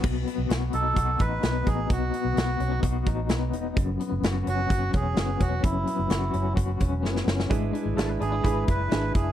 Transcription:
<<
  \new Staff \with { instrumentName = "Melodica" } { \time 4/4 \key fis \dorian \tempo 4 = 128 r4. a'4 b'4 gis'8 | fis'2 r2 | r4. fis'4 gis'4 fis'8 | e'2 r2 |
r4. gis'4 b'4 gis'8 | }
  \new Staff \with { instrumentName = "Clean electric guitar" } { \time 4/4 \key fis \dorian r1 | r1 | r1 | r1 |
<gis d' e' b'>8 <d' e' b'>8 <gis d' e' b'>8 <d' e' b'>8 <gis d' e' b'>8 <d' e' b'>8 <gis d' e' b'>8 <d' e' b'>8 | }
  \new Staff \with { instrumentName = "Upright piano" } { \time 4/4 \key fis \dorian r1 | r1 | r1 | r1 |
<d' e' gis'>8. r16 <d' e' gis'>8. r16 <d' e' gis'>8. r16 <d' e' gis'>8. r16 | }
  \new Staff \with { instrumentName = "Clean electric guitar" } { \time 4/4 \key fis \dorian b,8 b8 fis'8 dis'8 fis'8 dis'8 b8 dis'8 | b,8 b8 fis'8 cis'16 dis'16 fis'8 dis'8 b8 dis'8 | fis,8 b8 fis'8 cis'8 fis'8 cis'8 b8 cis'8 | fis,8 b8 fis'8 cis'8 fis'8 cis'8 b8 cis'8 |
gis8 d'8 a'16 b'16 d'16 e'16 b'8 e'8 d'8 e'8 | }
  \new Staff \with { instrumentName = "Fingered electric bass" } { \clef bass \time 4/4 \key fis \dorian b,,8 r16 b,,16 b,,8 b,,8 b,,8 a,,8 b,,8 a,,8 | b,,8 r16 b,,16 b,,8 b,,8 b,,8 a,,8 b,,8 e,,8 | fis,,8 r16 fis,,16 fis,,8 fis,,8 fis,,8 e,,8 fis,,8 e,,8 | fis,,8 r16 fis,,16 fis,,8 fis,,8 fis,,8 e,,8 fis,,8 fis,,8 |
gis,,8 r16 gis,,16 gis,,8 gis,,8 gis,,8 fis,,8 gis,,8 fis,,8 | }
  \new DrumStaff \with { instrumentName = "Drums" } \drummode { \time 4/4 <cymc bd>8 hh8 <hh sn>8 hh8 <hh bd>8 <hh bd>8 <hh sn>8 <hh bd>8 | <hh bd>8 hh8 <hh sn>8 hh8 <hh bd>8 <hh bd>8 <hh sn>8 hh8 | <hh bd>8 hh8 <hh sn>8 hh8 <hh bd>8 <hh bd>8 <hh sn>8 <hh bd>8 | <hh bd>8 hh8 <hh sn>8 hh8 <hh bd>8 <hh bd>8 sn16 sn16 sn16 sn16 |
<hh bd>8 hh8 <hh sn>8 hh8 <hh bd>8 <hh bd>8 <hh sn>8 <hh bd>8 | }
>>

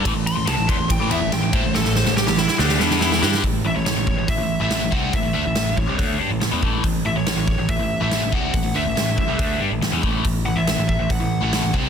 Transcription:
<<
  \new Staff \with { instrumentName = "Lead electric guitar" } { \time 4/4 \key e \dorian \tempo 4 = 141 r8 c'''8 a''8 c'''8 g''8 e''8 g''8 c''8 | a'8 c''8 g'8 e'8 g'8 d'8 e'4 | r8 e''16 cis''8. cis''8 e''8. e''8. fis''8 | e''8 e''4 cis''4 r4. |
r8 e''16 cis''8. cis''8 e''8. e''8. fis''8 | fis''8 e''4 e''4 r4. | r8 fis''16 e''8. e''8 fis''8. fis''8. r8 | }
  \new Staff \with { instrumentName = "Distorted electric guitar" } { \clef bass \time 4/4 \key e \dorian <a, e>16 <a, e>8 <a, e>16 <c g>16 <a, e>16 <e b>16 <a, e>16 <a, e>16 <a, e>16 <e b>16 <a, e>16 <a, e>16 <a, e>16 <a e'>16 <a, e>16 | <a, e>16 <a, e>8 <a, e>8 <a, e>8 r16 <d a d'>8 <e b e'>4 <g d' g'>8 | <a, e>8 <a, e>16 <a, e>16 <a, e>16 <a, e>8 <a, e>16 <a, e>16 <a, e>8 <a, e a>8 <a, e>16 <c g c'>8 | <a, e>16 <a, e>16 <d a>16 <a, e>16 <a, e>8 <a, e>16 <c g>16 <d a d'>8 <g d'>16 <a, e>16 <a, e>16 <e b>16 <a, e a>8 |
<a, e>8 <a, e>16 <a, e>16 <a, e>16 <a, e>8 <a, e>16 <a, e>16 <a, e>8 <a, e a>8 <a, e>16 <c g c'>8 | <a, e>16 <a, e>16 <d a>16 <a, e>16 <a, e>8 <a, e>16 <c g>16 <d a d'>8 <g d'>16 <a, e>16 <a, e>16 <e b>16 <a, e a>8 | <a, e>8 <a, e>16 <a, e>16 <a, e>16 <a, e>8 <a, e>16 <a, e>16 <a, e>8 <a, e a>8 <a, e>16 <c g c'>8 | }
  \new Staff \with { instrumentName = "Overdriven electric guitar" } { \clef bass \time 4/4 \key e \dorian <a, e>16 <a, e>8 <a, e>16 <c g>16 <a, e>16 <e b>16 <a, e>16 <a, e>16 <a, e>16 <e b>16 <a, e>16 <a, e>16 <a, e>16 <a e'>16 <a, e>16 | <a, e>16 <a, e>8 <a, e>8 <a, e>8 r16 <d a d'>8 <e b e'>4 <g d' g'>8 | <a, e>8 <a, e>16 <a, e>16 <a, e>16 <a, e>8 <a, e>16 <a, e>16 <a, e>8 <a, e a>8 <a, e>16 <c g c'>8 | <a, e>16 <a, e>16 <d a>16 <a, e>16 <a, e>8 <a, e>16 <c g>16 <d a d'>8 <g d'>16 <a, e>16 <a, e>16 <e b>16 <a, e a>8 |
<a, e>8 <a, e>16 <a, e>16 <a, e>16 <a, e>8 <a, e>16 <a, e>16 <a, e>8 <a, e a>8 <a, e>16 <c g c'>8 | <a, e>16 <a, e>16 <d a>16 <a, e>16 <a, e>8 <a, e>16 <c g>16 <d a d'>8 <g d'>16 <a, e>16 <a, e>16 <e b>16 <a, e a>8 | <a, e>8 <a, e>16 <a, e>16 <a, e>16 <a, e>8 <a, e>16 <a, e>16 <a, e>8 <a, e a>8 <a, e>16 <c g c'>8 | }
  \new Staff \with { instrumentName = "Picked electric bass" } { \clef bass \time 4/4 \key e \dorian a,,16 a,,8 a,,16 c,16 a,,16 e,16 a,,16 a,,16 a,,16 e,16 a,,16 a,,16 a,,16 a,16 a,,16 | a,,16 a,,8 a,,8 a,,8 r16 d,8 e,4 g,8 | a,,8 a,,16 a,,16 a,,16 a,,8 a,,16 a,,16 a,,8 a,,8 a,,16 c,8 | a,,16 a,,16 d,16 a,,16 a,,8 a,,16 c,16 d,8 g,16 a,,16 a,,16 e,16 a,,8 |
a,,8 a,,16 a,,16 a,,16 a,,8 a,,16 a,,16 a,,8 a,,8 a,,16 c,8 | a,,16 a,,16 d,16 a,,16 a,,8 a,,16 c,16 d,8 g,16 a,,16 a,,16 e,16 a,,8 | a,,8 a,,16 a,,16 a,,16 a,,8 a,,16 a,,16 a,,8 a,,8 a,,16 c,8 | }
  \new DrumStaff \with { instrumentName = "Drums" } \drummode { \time 4/4 <bd cymr>8 cymr8 <cymr sn>8 <bd cymr>8 <bd cymr>8 cymr8 <cymr sn>8 <bd cymr>8 | sn16 sn16 sn16 sn16 sn16 sn16 sn16 sn16 sn16 sn16 sn16 sn16 sn16 sn16 sn16 sn16 | <hho bd>4 <hho sn>8 bd8 <hho bd>4 <hho sn>8 bd8 | <hho bd>4 <hho sn>8 bd8 <hho bd>4 <hho sn>8 bd8 |
<hho bd>4 <hho sn>8 bd8 <hho bd>4 <hho sn>8 bd8 | <hho bd>4 <hho sn>8 bd8 <hho bd>4 <hho sn>8 bd8 | <hho bd>4 <hho sn>8 bd8 <hho bd>4 <hho sn>8 bd8 | }
>>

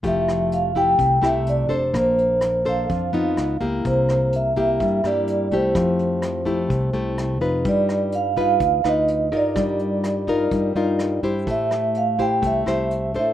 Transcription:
<<
  \new Staff \with { instrumentName = "Vibraphone" } { \time 4/4 \key f \major \tempo 4 = 126 e''4 f''8 g''4 e''8 d''8 c''8 | c''4. f''2 r8 | c''4 e''8 e''4 d''4 c''8~ | c''2.~ c''8 r8 |
d''4 f''8 f''4 ees''4 d''8~ | d''2.~ d''8 r8 | e''4 f''8 g''8 e''4. e''8 | }
  \new Staff \with { instrumentName = "Nylon-string guitar" } { \time 4/4 \key f \major << { <a e' g'>4. <a e' g'>4 <a e' g'>4 <d' a' c''>8~ | <d' a' c''>4. <d' a' c''>4 <b ees' f'>4 <bes e' g'>8~ | <bes e' g'>4. <bes e' g'>4 <bes e' g'>4 <a e' g'>8~ | <a e' g'>4. <a e' g'>4 <a e' g'>4 <ees' f' b'>8~ |
<ees' f' b'>4. <ees' f' b'>4 <ees' f' b'>4 <ees' f' bes'>8~ | <ees' f' bes'>4. <ees' f' bes'>4 <ees' f' bes'>4 <e' g' c''>8~ | <e' g' c''>4. <e' g' c''>4 <e' g' c''>4 <d' a' c''>8 | } \\ { f2 c2 | bes2 f4 r4 | c2 g2 | f2 c2 |
g2 r2 | g2 g2 | a2 a2 | } >> }
  \new Staff \with { instrumentName = "Fingered electric bass" } { \clef bass \time 4/4 \key f \major f,,2 c,8 c,4 f,,8 | bes,,2 f,8 f,8 des,8 des,8 | c,2 g,8 g,4 c,8 | f,2 c,8 c,4 f,8 |
g,2 d,8 d,4 g,8 | g,2 g,8 g,4 g,8 | a,2 c,8 c,4 a,8 | }
  \new DrumStaff \with { instrumentName = "Drums" } \drummode { \time 4/4 <hh bd>8 <hh ss>8 hh8 <hh bd>8 <hh bd>8 <hh ss>8 hh8 <hh bd>8 | <hh bd ss>8 hh8 <hh ss>8 <hh bd>8 <hh bd>8 hh8 <hh ss>8 <hh bd>8 | <hh bd>8 <hh ss>8 hh8 <hh bd>8 <hh bd>8 <hh ss>8 hh8 <hh bd>8 | <hh bd ss>8 hh8 <hh ss>8 <hh bd>8 <hh bd>8 hh8 <hh ss>8 <hh bd>8 |
<hh bd>8 <hh ss>8 hh8 <hh bd>8 <hh bd>8 <hh ss>8 hh8 <hh bd>8 | <hh bd ss>8 hh8 <hh ss>8 <hh bd>8 <hh bd>8 hh8 <hh ss>8 <hh bd>8 | <hh bd>8 <hh ss>8 hh8 <hh bd>8 <hh bd>8 <hh ss>8 hh8 <hh bd>8 | }
>>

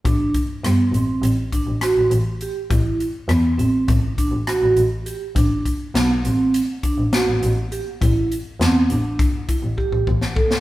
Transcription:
<<
  \new Staff \with { instrumentName = "Vibraphone" } { \time 9/8 \key a \dorian \tempo 4. = 68 d'4 b8 c'4 d'8 fis'4 g'8 | e'4 b8 c'4 d'8 fis'4 g'8 | d'4 b8 c'4 d'8 fis'4 g'8 | e'4 c'8 d'4 e'8 g'4 a'8 | }
  \new Staff \with { instrumentName = "Double bass" } { \clef bass \time 9/8 \key a \dorian a,,8 r8 g,8 a,,16 r16 a,,8. a,,16 r16 a,,16 a,,8 r8 | a,,8 r8 e,8 a,,16 r16 a,,8. a,,16 r16 a,,16 a,,8 r8 | a,,8 r8 b,,8 a,,8 r8. a,,16 r16 a,,16 a,,8 r8 | a,,8 r8 e,8 a,,8 r8. a,,16 r16 a,,16 a,,8 r8 | }
  \new DrumStaff \with { instrumentName = "Drums" } \drummode { \time 9/8 <hh bd>8 <hh bd>8 <hh ss>8 hh8 hh8 <hh bd>8 <hh ss>8 hh8 hh8 | <hh bd>8 hh8 <hh ss>8 hh8 <hh bd>8 <hh bd>8 <hh ss>8 hh8 hh8 | <hh bd>8 <hh bd>8 <hh sn>8 hh8 hh8 <hh bd>8 <hh sn>8 hh8 hh8 | <hh bd>8 hh8 <hh sn>8 hh8 <hh bd>8 <hh bd>8 bd16 bd16 bd16 sn16 bd16 sn16 | }
>>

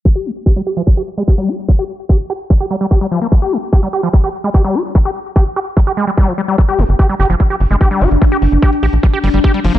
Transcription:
<<
  \new Staff \with { instrumentName = "Ambient pad" } { \time 4/4 \key g \phrygian \tempo 4 = 147 r1 | r1 | r1 | r1 |
d'1~ | d'1 | }
  \new Staff \with { instrumentName = "Acid bass" } { \clef bass \time 4/4 \key g \phrygian g16 g'16 g16 r16 g'16 g16 g'16 f16 g16 g'16 r16 aes16 g'16 g16 g'16 r16 | g16 g'16 r8 g'16 r16 g'16 r16 g16 g'16 g16 g16 g'16 g16 f16 bes16 | g16 g'16 g16 r16 g'16 g16 g'16 f16 g16 g'16 r16 aes16 g'16 g16 g'16 r16 | g16 g'16 r8 g'16 r16 g'16 r16 g16 g'16 aes16 g16 g16 f16 g16 g16 |
g16 g'16 g16 r16 g'16 g16 g'16 f16 g16 g'16 r16 aes16 g'16 g16 g'16 r16 | g16 g'16 r8 g'16 r16 g'16 r16 g16 g'16 g16 g16 g'16 g16 f16 bes16 | }
  \new Staff \with { instrumentName = "Analog synth bass" } { \clef bass \time 4/4 \key g \phrygian r1 | r1 | r1 | r1 |
r8 g,,16 g,,16 r8 g,,16 g,,16 r8 g,,16 g,,16 r8 g,,16 g,,16 | r8 g,,16 g,,16 r8 bes,,16 bes,,16 r8 g,,16 g,,16 r8 g,,16 g,,16 | }
  \new DrumStaff \with { instrumentName = "Drums" } \drummode { \time 4/4 bd4 bd4 bd4 bd4 | bd4 bd4 bd4 bd4 | bd4 bd4 bd4 bd4 | bd4 bd4 bd4 bd4 |
<hh bd>16 hh16 hho16 hh16 <hh bd>16 hh16 hho16 hh16 <hh bd>16 hh16 hho16 hh16 <hh bd>16 hh16 hho16 hh16 | <hh bd>16 hh16 hho16 hh16 <hh bd>16 hh16 hho16 hh16 <hh bd>16 hh16 hho16 hh16 <hh bd>16 hh16 hho16 hh16 | }
>>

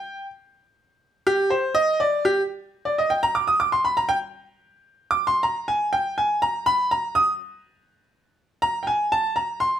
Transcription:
\new Staff \with { instrumentName = "Grand piano" } { \time 4/4 \key bes \mixolydian \tempo 4 = 122 g''8 r2 g'8 c''8 ees''8 | d''8 g'8 r8. d''16 ees''16 g''16 bes''16 d'''16 ees'''16 d'''16 c'''16 b''16 | bes''16 g''16 r4. \tuplet 3/2 { r8 d'''8 c'''8 } bes''8 aes''8 | g''8 aes''8 bes''8 b''8 bes''8 ees'''8 r4 |
r4. bes''8 <g'' aes''>8 a''8 bes''8 c'''8 | }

